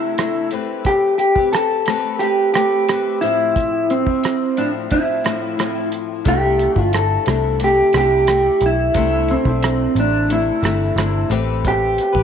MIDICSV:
0, 0, Header, 1, 5, 480
1, 0, Start_track
1, 0, Key_signature, 0, "major"
1, 0, Tempo, 674157
1, 612, Time_signature, 4, 2, 24, 8
1, 8708, End_track
2, 0, Start_track
2, 0, Title_t, "Clean electric guitar"
2, 0, Program_c, 0, 27
2, 0, Note_on_c, 0, 64, 71
2, 351, Note_off_c, 0, 64, 0
2, 616, Note_on_c, 0, 67, 86
2, 833, Note_off_c, 0, 67, 0
2, 841, Note_on_c, 0, 67, 93
2, 1084, Note_off_c, 0, 67, 0
2, 1087, Note_on_c, 0, 69, 83
2, 1559, Note_off_c, 0, 69, 0
2, 1562, Note_on_c, 0, 67, 80
2, 1798, Note_off_c, 0, 67, 0
2, 1806, Note_on_c, 0, 67, 86
2, 2262, Note_off_c, 0, 67, 0
2, 2287, Note_on_c, 0, 64, 94
2, 2781, Note_on_c, 0, 60, 81
2, 2785, Note_off_c, 0, 64, 0
2, 3261, Note_on_c, 0, 62, 69
2, 3272, Note_off_c, 0, 60, 0
2, 3325, Note_off_c, 0, 62, 0
2, 3502, Note_on_c, 0, 64, 63
2, 4190, Note_off_c, 0, 64, 0
2, 4474, Note_on_c, 0, 67, 87
2, 4837, Note_off_c, 0, 67, 0
2, 4837, Note_on_c, 0, 65, 87
2, 4947, Note_off_c, 0, 65, 0
2, 4950, Note_on_c, 0, 69, 73
2, 5394, Note_off_c, 0, 69, 0
2, 5441, Note_on_c, 0, 67, 86
2, 5669, Note_off_c, 0, 67, 0
2, 5678, Note_on_c, 0, 67, 98
2, 6160, Note_off_c, 0, 67, 0
2, 6165, Note_on_c, 0, 64, 94
2, 6629, Note_on_c, 0, 60, 74
2, 6643, Note_off_c, 0, 64, 0
2, 7115, Note_off_c, 0, 60, 0
2, 7118, Note_on_c, 0, 62, 77
2, 7349, Note_off_c, 0, 62, 0
2, 7352, Note_on_c, 0, 64, 72
2, 8033, Note_off_c, 0, 64, 0
2, 8316, Note_on_c, 0, 67, 89
2, 8708, Note_off_c, 0, 67, 0
2, 8708, End_track
3, 0, Start_track
3, 0, Title_t, "Nylon-string guitar"
3, 0, Program_c, 1, 24
3, 0, Note_on_c, 1, 48, 48
3, 0, Note_on_c, 1, 57, 54
3, 0, Note_on_c, 1, 62, 56
3, 0, Note_on_c, 1, 64, 62
3, 111, Note_off_c, 1, 48, 0
3, 119, Note_on_c, 1, 48, 45
3, 122, Note_off_c, 1, 57, 0
3, 131, Note_on_c, 1, 57, 50
3, 132, Note_off_c, 1, 62, 0
3, 138, Note_off_c, 1, 64, 0
3, 140, Note_on_c, 1, 62, 50
3, 146, Note_on_c, 1, 64, 57
3, 356, Note_off_c, 1, 57, 0
3, 364, Note_on_c, 1, 57, 62
3, 365, Note_off_c, 1, 62, 0
3, 366, Note_off_c, 1, 48, 0
3, 368, Note_on_c, 1, 60, 65
3, 373, Note_off_c, 1, 64, 0
3, 376, Note_on_c, 1, 67, 70
3, 382, Note_on_c, 1, 71, 75
3, 953, Note_off_c, 1, 71, 0
3, 961, Note_on_c, 1, 71, 51
3, 968, Note_off_c, 1, 67, 0
3, 977, Note_on_c, 1, 67, 49
3, 982, Note_off_c, 1, 60, 0
3, 983, Note_off_c, 1, 57, 0
3, 985, Note_on_c, 1, 60, 36
3, 1325, Note_on_c, 1, 57, 45
3, 1327, Note_off_c, 1, 71, 0
3, 1330, Note_off_c, 1, 60, 0
3, 1335, Note_off_c, 1, 67, 0
3, 1338, Note_on_c, 1, 60, 52
3, 1345, Note_on_c, 1, 67, 58
3, 1349, Note_on_c, 1, 71, 56
3, 1557, Note_off_c, 1, 57, 0
3, 1565, Note_on_c, 1, 57, 49
3, 1567, Note_off_c, 1, 60, 0
3, 1574, Note_off_c, 1, 67, 0
3, 1575, Note_on_c, 1, 60, 51
3, 1581, Note_off_c, 1, 71, 0
3, 1582, Note_on_c, 1, 67, 55
3, 1592, Note_on_c, 1, 71, 62
3, 1804, Note_off_c, 1, 57, 0
3, 1813, Note_on_c, 1, 57, 54
3, 1814, Note_off_c, 1, 60, 0
3, 1818, Note_off_c, 1, 67, 0
3, 1823, Note_off_c, 1, 71, 0
3, 1826, Note_on_c, 1, 60, 49
3, 1837, Note_on_c, 1, 67, 52
3, 1838, Note_on_c, 1, 71, 56
3, 2040, Note_off_c, 1, 57, 0
3, 2049, Note_on_c, 1, 57, 50
3, 2052, Note_off_c, 1, 60, 0
3, 2059, Note_off_c, 1, 67, 0
3, 2061, Note_on_c, 1, 60, 51
3, 2066, Note_off_c, 1, 71, 0
3, 2068, Note_on_c, 1, 67, 53
3, 2080, Note_on_c, 1, 71, 58
3, 2289, Note_on_c, 1, 45, 58
3, 2290, Note_off_c, 1, 57, 0
3, 2293, Note_on_c, 1, 53, 63
3, 2297, Note_off_c, 1, 60, 0
3, 2301, Note_off_c, 1, 67, 0
3, 2305, Note_on_c, 1, 60, 62
3, 2305, Note_on_c, 1, 64, 73
3, 2307, Note_off_c, 1, 71, 0
3, 2890, Note_off_c, 1, 64, 0
3, 2892, Note_off_c, 1, 45, 0
3, 2893, Note_on_c, 1, 64, 56
3, 2894, Note_off_c, 1, 53, 0
3, 2906, Note_off_c, 1, 60, 0
3, 2909, Note_on_c, 1, 60, 45
3, 2917, Note_on_c, 1, 53, 42
3, 3248, Note_off_c, 1, 53, 0
3, 3251, Note_on_c, 1, 45, 52
3, 3254, Note_off_c, 1, 64, 0
3, 3256, Note_off_c, 1, 60, 0
3, 3256, Note_on_c, 1, 53, 50
3, 3265, Note_on_c, 1, 60, 51
3, 3276, Note_on_c, 1, 64, 52
3, 3476, Note_off_c, 1, 45, 0
3, 3484, Note_on_c, 1, 45, 45
3, 3488, Note_off_c, 1, 53, 0
3, 3496, Note_off_c, 1, 60, 0
3, 3497, Note_on_c, 1, 53, 59
3, 3505, Note_off_c, 1, 64, 0
3, 3505, Note_on_c, 1, 60, 48
3, 3513, Note_on_c, 1, 64, 54
3, 3718, Note_off_c, 1, 45, 0
3, 3726, Note_off_c, 1, 53, 0
3, 3726, Note_on_c, 1, 45, 58
3, 3732, Note_off_c, 1, 60, 0
3, 3735, Note_on_c, 1, 53, 55
3, 3740, Note_off_c, 1, 64, 0
3, 3741, Note_on_c, 1, 60, 55
3, 3749, Note_on_c, 1, 64, 53
3, 3957, Note_off_c, 1, 45, 0
3, 3965, Note_on_c, 1, 45, 46
3, 3966, Note_off_c, 1, 53, 0
3, 3975, Note_on_c, 1, 53, 48
3, 3978, Note_off_c, 1, 60, 0
3, 3982, Note_off_c, 1, 64, 0
3, 3988, Note_on_c, 1, 60, 51
3, 3996, Note_on_c, 1, 64, 52
3, 4443, Note_off_c, 1, 45, 0
3, 4446, Note_on_c, 1, 48, 68
3, 4452, Note_off_c, 1, 53, 0
3, 4455, Note_off_c, 1, 60, 0
3, 4455, Note_on_c, 1, 57, 82
3, 4457, Note_on_c, 1, 62, 82
3, 4460, Note_off_c, 1, 64, 0
3, 4463, Note_on_c, 1, 64, 76
3, 4801, Note_off_c, 1, 64, 0
3, 4809, Note_on_c, 1, 64, 54
3, 4810, Note_off_c, 1, 48, 0
3, 4815, Note_off_c, 1, 57, 0
3, 4816, Note_off_c, 1, 62, 0
3, 4824, Note_on_c, 1, 62, 46
3, 4835, Note_on_c, 1, 57, 39
3, 5165, Note_on_c, 1, 48, 47
3, 5168, Note_off_c, 1, 57, 0
3, 5172, Note_off_c, 1, 64, 0
3, 5176, Note_on_c, 1, 57, 46
3, 5179, Note_off_c, 1, 62, 0
3, 5187, Note_on_c, 1, 62, 55
3, 5194, Note_on_c, 1, 64, 54
3, 5397, Note_off_c, 1, 48, 0
3, 5406, Note_on_c, 1, 48, 49
3, 5409, Note_off_c, 1, 57, 0
3, 5418, Note_off_c, 1, 62, 0
3, 5418, Note_on_c, 1, 57, 57
3, 5425, Note_off_c, 1, 64, 0
3, 5426, Note_on_c, 1, 62, 52
3, 5437, Note_on_c, 1, 64, 55
3, 5643, Note_off_c, 1, 48, 0
3, 5651, Note_off_c, 1, 57, 0
3, 5651, Note_on_c, 1, 48, 58
3, 5657, Note_off_c, 1, 62, 0
3, 5659, Note_on_c, 1, 57, 50
3, 5666, Note_off_c, 1, 64, 0
3, 5666, Note_on_c, 1, 62, 65
3, 5674, Note_on_c, 1, 64, 66
3, 5888, Note_off_c, 1, 57, 0
3, 5893, Note_off_c, 1, 48, 0
3, 5897, Note_on_c, 1, 57, 48
3, 5898, Note_off_c, 1, 62, 0
3, 5904, Note_off_c, 1, 64, 0
3, 5907, Note_on_c, 1, 62, 46
3, 5917, Note_on_c, 1, 64, 64
3, 6363, Note_on_c, 1, 48, 81
3, 6370, Note_off_c, 1, 62, 0
3, 6374, Note_off_c, 1, 57, 0
3, 6376, Note_on_c, 1, 57, 79
3, 6379, Note_on_c, 1, 62, 76
3, 6382, Note_off_c, 1, 64, 0
3, 6385, Note_on_c, 1, 64, 76
3, 6715, Note_off_c, 1, 64, 0
3, 6724, Note_on_c, 1, 64, 51
3, 6728, Note_off_c, 1, 48, 0
3, 6732, Note_off_c, 1, 62, 0
3, 6735, Note_off_c, 1, 57, 0
3, 6741, Note_on_c, 1, 62, 48
3, 6754, Note_on_c, 1, 57, 48
3, 7087, Note_on_c, 1, 48, 56
3, 7088, Note_off_c, 1, 64, 0
3, 7090, Note_off_c, 1, 57, 0
3, 7097, Note_off_c, 1, 62, 0
3, 7098, Note_on_c, 1, 57, 48
3, 7107, Note_on_c, 1, 62, 55
3, 7116, Note_on_c, 1, 64, 55
3, 7312, Note_off_c, 1, 48, 0
3, 7319, Note_off_c, 1, 57, 0
3, 7321, Note_on_c, 1, 48, 52
3, 7328, Note_on_c, 1, 57, 51
3, 7331, Note_off_c, 1, 62, 0
3, 7337, Note_off_c, 1, 64, 0
3, 7340, Note_on_c, 1, 62, 51
3, 7345, Note_on_c, 1, 64, 56
3, 7544, Note_off_c, 1, 48, 0
3, 7552, Note_on_c, 1, 48, 50
3, 7556, Note_off_c, 1, 57, 0
3, 7565, Note_on_c, 1, 57, 64
3, 7567, Note_off_c, 1, 62, 0
3, 7571, Note_off_c, 1, 64, 0
3, 7576, Note_on_c, 1, 62, 56
3, 7579, Note_on_c, 1, 64, 55
3, 7796, Note_off_c, 1, 48, 0
3, 7804, Note_on_c, 1, 48, 50
3, 7805, Note_off_c, 1, 57, 0
3, 7811, Note_off_c, 1, 62, 0
3, 7814, Note_on_c, 1, 57, 47
3, 7816, Note_off_c, 1, 64, 0
3, 7819, Note_on_c, 1, 62, 57
3, 7830, Note_on_c, 1, 64, 52
3, 8033, Note_off_c, 1, 57, 0
3, 8042, Note_on_c, 1, 57, 65
3, 8047, Note_off_c, 1, 62, 0
3, 8048, Note_off_c, 1, 48, 0
3, 8050, Note_on_c, 1, 60, 80
3, 8054, Note_off_c, 1, 64, 0
3, 8056, Note_on_c, 1, 67, 72
3, 8063, Note_on_c, 1, 71, 84
3, 8625, Note_off_c, 1, 71, 0
3, 8633, Note_on_c, 1, 71, 53
3, 8646, Note_off_c, 1, 67, 0
3, 8649, Note_on_c, 1, 67, 48
3, 8655, Note_off_c, 1, 57, 0
3, 8655, Note_off_c, 1, 60, 0
3, 8666, Note_on_c, 1, 60, 40
3, 8708, Note_off_c, 1, 60, 0
3, 8708, Note_off_c, 1, 67, 0
3, 8708, Note_off_c, 1, 71, 0
3, 8708, End_track
4, 0, Start_track
4, 0, Title_t, "Picked electric bass"
4, 0, Program_c, 2, 34
4, 4457, Note_on_c, 2, 36, 88
4, 4744, Note_off_c, 2, 36, 0
4, 4816, Note_on_c, 2, 31, 73
4, 5103, Note_off_c, 2, 31, 0
4, 5178, Note_on_c, 2, 36, 75
4, 5560, Note_off_c, 2, 36, 0
4, 5654, Note_on_c, 2, 36, 72
4, 6038, Note_off_c, 2, 36, 0
4, 6133, Note_on_c, 2, 35, 90
4, 6325, Note_off_c, 2, 35, 0
4, 6370, Note_on_c, 2, 36, 94
4, 6659, Note_off_c, 2, 36, 0
4, 6731, Note_on_c, 2, 35, 85
4, 7020, Note_off_c, 2, 35, 0
4, 7086, Note_on_c, 2, 33, 81
4, 7472, Note_off_c, 2, 33, 0
4, 7566, Note_on_c, 2, 31, 87
4, 7761, Note_off_c, 2, 31, 0
4, 7801, Note_on_c, 2, 31, 95
4, 7997, Note_off_c, 2, 31, 0
4, 8045, Note_on_c, 2, 33, 97
4, 8527, Note_off_c, 2, 33, 0
4, 8649, Note_on_c, 2, 33, 81
4, 8708, Note_off_c, 2, 33, 0
4, 8708, End_track
5, 0, Start_track
5, 0, Title_t, "Drums"
5, 129, Note_on_c, 9, 42, 62
5, 134, Note_on_c, 9, 37, 81
5, 200, Note_off_c, 9, 42, 0
5, 205, Note_off_c, 9, 37, 0
5, 361, Note_on_c, 9, 42, 47
5, 433, Note_off_c, 9, 42, 0
5, 604, Note_on_c, 9, 42, 60
5, 606, Note_on_c, 9, 36, 83
5, 675, Note_off_c, 9, 42, 0
5, 677, Note_off_c, 9, 36, 0
5, 847, Note_on_c, 9, 42, 46
5, 918, Note_off_c, 9, 42, 0
5, 966, Note_on_c, 9, 36, 88
5, 1038, Note_off_c, 9, 36, 0
5, 1089, Note_on_c, 9, 42, 58
5, 1100, Note_on_c, 9, 37, 79
5, 1161, Note_off_c, 9, 42, 0
5, 1172, Note_off_c, 9, 37, 0
5, 1322, Note_on_c, 9, 42, 46
5, 1337, Note_on_c, 9, 37, 77
5, 1393, Note_off_c, 9, 42, 0
5, 1409, Note_off_c, 9, 37, 0
5, 1568, Note_on_c, 9, 42, 53
5, 1639, Note_off_c, 9, 42, 0
5, 1808, Note_on_c, 9, 42, 47
5, 1819, Note_on_c, 9, 37, 74
5, 1879, Note_off_c, 9, 42, 0
5, 1890, Note_off_c, 9, 37, 0
5, 2055, Note_on_c, 9, 42, 62
5, 2060, Note_on_c, 9, 37, 77
5, 2126, Note_off_c, 9, 42, 0
5, 2131, Note_off_c, 9, 37, 0
5, 2293, Note_on_c, 9, 42, 48
5, 2364, Note_off_c, 9, 42, 0
5, 2535, Note_on_c, 9, 36, 96
5, 2535, Note_on_c, 9, 42, 61
5, 2606, Note_off_c, 9, 36, 0
5, 2606, Note_off_c, 9, 42, 0
5, 2777, Note_on_c, 9, 42, 42
5, 2848, Note_off_c, 9, 42, 0
5, 2896, Note_on_c, 9, 36, 85
5, 2967, Note_off_c, 9, 36, 0
5, 3016, Note_on_c, 9, 42, 67
5, 3027, Note_on_c, 9, 37, 78
5, 3087, Note_off_c, 9, 42, 0
5, 3098, Note_off_c, 9, 37, 0
5, 3255, Note_on_c, 9, 42, 43
5, 3326, Note_off_c, 9, 42, 0
5, 3494, Note_on_c, 9, 42, 57
5, 3500, Note_on_c, 9, 36, 77
5, 3565, Note_off_c, 9, 42, 0
5, 3571, Note_off_c, 9, 36, 0
5, 3733, Note_on_c, 9, 42, 46
5, 3744, Note_on_c, 9, 37, 78
5, 3805, Note_off_c, 9, 42, 0
5, 3815, Note_off_c, 9, 37, 0
5, 3981, Note_on_c, 9, 42, 65
5, 3986, Note_on_c, 9, 37, 74
5, 4052, Note_off_c, 9, 42, 0
5, 4058, Note_off_c, 9, 37, 0
5, 4214, Note_on_c, 9, 42, 47
5, 4286, Note_off_c, 9, 42, 0
5, 4452, Note_on_c, 9, 42, 61
5, 4456, Note_on_c, 9, 36, 97
5, 4524, Note_off_c, 9, 42, 0
5, 4527, Note_off_c, 9, 36, 0
5, 4695, Note_on_c, 9, 42, 45
5, 4766, Note_off_c, 9, 42, 0
5, 4814, Note_on_c, 9, 36, 78
5, 4885, Note_off_c, 9, 36, 0
5, 4934, Note_on_c, 9, 42, 67
5, 4945, Note_on_c, 9, 37, 76
5, 5005, Note_off_c, 9, 42, 0
5, 5016, Note_off_c, 9, 37, 0
5, 5168, Note_on_c, 9, 42, 45
5, 5184, Note_on_c, 9, 37, 81
5, 5239, Note_off_c, 9, 42, 0
5, 5255, Note_off_c, 9, 37, 0
5, 5410, Note_on_c, 9, 42, 65
5, 5481, Note_off_c, 9, 42, 0
5, 5645, Note_on_c, 9, 42, 49
5, 5656, Note_on_c, 9, 37, 85
5, 5716, Note_off_c, 9, 42, 0
5, 5727, Note_off_c, 9, 37, 0
5, 5891, Note_on_c, 9, 42, 63
5, 5896, Note_on_c, 9, 37, 77
5, 5962, Note_off_c, 9, 42, 0
5, 5967, Note_off_c, 9, 37, 0
5, 6128, Note_on_c, 9, 42, 43
5, 6199, Note_off_c, 9, 42, 0
5, 6368, Note_on_c, 9, 42, 67
5, 6371, Note_on_c, 9, 36, 95
5, 6440, Note_off_c, 9, 42, 0
5, 6442, Note_off_c, 9, 36, 0
5, 6611, Note_on_c, 9, 42, 41
5, 6682, Note_off_c, 9, 42, 0
5, 6731, Note_on_c, 9, 36, 90
5, 6802, Note_off_c, 9, 36, 0
5, 6853, Note_on_c, 9, 42, 70
5, 6864, Note_on_c, 9, 37, 80
5, 6924, Note_off_c, 9, 42, 0
5, 6936, Note_off_c, 9, 37, 0
5, 7093, Note_on_c, 9, 42, 45
5, 7164, Note_off_c, 9, 42, 0
5, 7335, Note_on_c, 9, 42, 58
5, 7406, Note_off_c, 9, 42, 0
5, 7573, Note_on_c, 9, 42, 50
5, 7584, Note_on_c, 9, 37, 83
5, 7644, Note_off_c, 9, 42, 0
5, 7655, Note_off_c, 9, 37, 0
5, 7816, Note_on_c, 9, 42, 62
5, 7821, Note_on_c, 9, 37, 76
5, 7887, Note_off_c, 9, 42, 0
5, 7892, Note_off_c, 9, 37, 0
5, 8052, Note_on_c, 9, 42, 51
5, 8124, Note_off_c, 9, 42, 0
5, 8293, Note_on_c, 9, 36, 90
5, 8293, Note_on_c, 9, 42, 63
5, 8364, Note_off_c, 9, 36, 0
5, 8364, Note_off_c, 9, 42, 0
5, 8532, Note_on_c, 9, 42, 43
5, 8603, Note_off_c, 9, 42, 0
5, 8650, Note_on_c, 9, 36, 85
5, 8708, Note_off_c, 9, 36, 0
5, 8708, End_track
0, 0, End_of_file